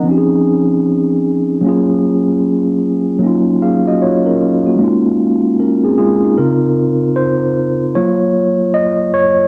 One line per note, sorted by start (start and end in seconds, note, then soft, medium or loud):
0.03 1.59 F3 medium
0.03 1.60 C4 medium
0.03 1.61 C#4 medium
0.09 1.62 D#4 medium
0.09 0.17 G4 medium
0.17 1.66 G#4 medium
1.61 3.17 F#3 medium
1.61 3.18 A#3 medium
1.61 3.19 C#4 medium
1.67 3.20 F4 medium
1.67 3.21 G#4 medium
3.19 4.75 F#3 medium
3.19 3.60 A#3 medium
3.19 3.61 C#4 medium
3.25 3.62 D#4 medium
3.25 3.63 F4 medium
3.62 3.86 G#4 medium
3.62 3.86 F5 medium
3.88 4.00 F#4 medium
3.88 4.00 D#5 medium
4.02 4.26 F4 medium
4.02 4.26 C#5 medium
4.26 4.64 C#4 medium
4.26 4.64 A#4 medium
4.67 4.77 A#3 soft
4.67 5.04 F#4 medium
4.76 5.16 G#3 medium
4.76 5.18 A#3 medium
4.80 5.18 C#4 medium
4.80 5.19 D#4 medium
4.80 5.20 F4 medium
5.60 5.84 C#4 medium
5.60 5.83 A#4 medium
5.84 5.98 C4 medium
5.84 5.96 G#4 medium
5.98 6.23 G#3 medium
5.98 6.23 F4 medium
5.98 6.38 G#4 medium
6.24 6.61 D#4 medium
6.38 6.95 C#3 medium
6.38 6.95 C4 soft
6.38 6.95 F4 medium
6.38 7.12 A#4 medium
7.16 7.97 C5 medium
7.95 9.10 F#3 medium
7.95 9.10 A#3 soft
7.95 9.10 F4 medium
7.95 8.76 C#5 medium
8.74 9.15 D#5 loud
9.14 9.48 C#5 loud